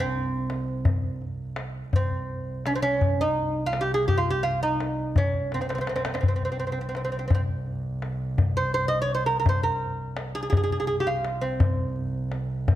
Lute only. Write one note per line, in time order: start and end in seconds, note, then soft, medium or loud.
0.00 1.24 C4 medium
1.96 2.66 C4 medium
2.66 2.73 C#4 medium
2.75 2.81 C4 medium
2.82 3.22 C#4 medium
3.21 3.66 D#4 medium
3.66 3.82 F4 medium
3.81 3.94 G4 medium
3.94 4.07 G#4 medium
4.08 4.19 G4 medium
4.18 4.28 F4 medium
4.30 4.43 G4 loud
4.43 4.62 F4 medium
4.63 5.18 D#4 medium
5.18 5.54 C#4 medium
5.54 5.60 C4 medium
5.61 5.67 C4 soft
5.69 5.74 C4 medium
5.75 5.80 C4 medium
5.81 5.88 C4 medium
5.89 5.94 C4 medium
5.96 6.03 C4 medium
6.06 6.12 C4 soft
6.14 6.20 C4 medium
6.21 6.27 C4 soft
6.28 6.35 C4 soft
6.36 6.42 C4 soft
6.45 6.51 C4 medium
6.52 6.58 C4 soft
6.59 6.65 C4 medium
6.67 6.71 C4 soft
6.72 6.79 C4 medium
6.81 6.87 C4 soft
6.89 6.95 C4 medium
6.96 7.03 C4 soft
7.04 7.10 C4 medium
7.12 7.18 C4 soft
7.19 7.25 C4 soft
7.28 7.33 C4 soft
7.35 7.40 C4 medium
8.57 8.73 C5 loud
8.74 8.88 C5 loud
8.88 9.01 D#5 loud
9.02 9.14 C#5 medium
9.15 9.26 C5 medium
9.26 9.37 A#4 medium
9.40 9.48 A#4 medium
9.49 9.63 C5 medium
9.63 10.35 A#4 medium
10.35 10.41 G#4 medium
10.43 10.49 G#4 medium
10.50 10.56 G#4 medium
10.57 10.62 G#4 medium
10.64 10.71 G#4 medium
10.72 10.79 G#4 medium
10.80 10.86 G#4 medium
10.87 10.95 G#4 medium
11.00 11.07 G4 medium
11.07 11.43 F4 medium
11.41 12.37 C4 medium